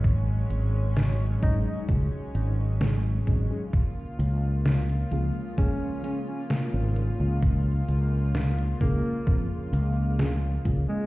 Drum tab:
HH |x-x-xxx-x-x-x-x-|x-x-xxx-x-x-x-x-|x-x-xxx-x-x-x-x-|
SD |----o-------o---|----o-------o---|----o-------o---|
BD |o-----o-o-----o-|o-------o-------|o-----o-o-----o-|